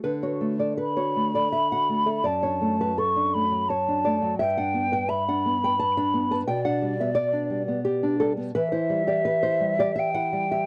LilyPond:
<<
  \new Staff \with { instrumentName = "Flute" } { \time 3/4 \key d \major \tempo 4 = 85 r4 b''2 | a''4 cis'''8 b''8 a''4 | g''4 b''2 | d''2~ d''8 r8 |
\key e \minor e''2 g''4 | }
  \new Staff \with { instrumentName = "Nylon-string guitar" } { \time 3/4 \key d \major << { b'16 cis''8 d''16 b'16 cis''8 d''16 e''16 fis''8 e''16 | d''16 cis''8 b'16 a'4 cis''8 d''8 | e''16 fis''8 g''16 e''16 fis''8 g''16 a''16 b''8 a''16 | g''16 fis''8 e''16 d''4 g'8 a'8 |
\key e \minor b'16 c''8 d''16 b'16 c''8 d''16 e''16 fis''8 e''16 | } \\ { d16 fis'16 a16 a'8 fis'16 a16 a'8 fis'16 a16 a'16 | fis,16 d'16 a16 fis8 d'16 a16 fis8 d'16 a16 fis16 | g,16 d'16 b16 b'8 d'16 b16 b'8 d'16 b16 b'16 | b,16 d'16 g16 b8 d'16 g16 b8 d'16 g16 b16 |
e16 e'16 g16 g'8 e'16 g16 g'8 e'16 g16 g'16 | } >> }
>>